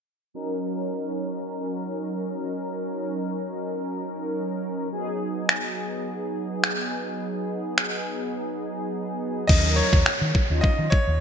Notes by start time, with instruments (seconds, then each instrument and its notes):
0.34 analog polysynth F#3 C#4 D#4 A#4
4.92 analog polysynth F#3 B3 D#4 G#4
5.49 finger snap
6.64 finger snap
7.78 finger snap
9.47 fingered electric bass D#2, analog polysynth F#3 C#4 D#4 A#4, grand piano D#5, kick, crash, downlifter
9.76 grand piano C#5
9.93 fingered electric bass D#2, kick
10.06 finger snap
10.21 fingered electric bass D#3
10.35 kick
10.50 fingered electric bass D#2, analog polysynth F#3 C#4 D#4 F4
10.61 grand piano D#5, muted fingered electric bass stroke, kick
10.79 fingered electric bass D#3
10.90 grand piano C#5, kick
11.07 fingered electric bass D#2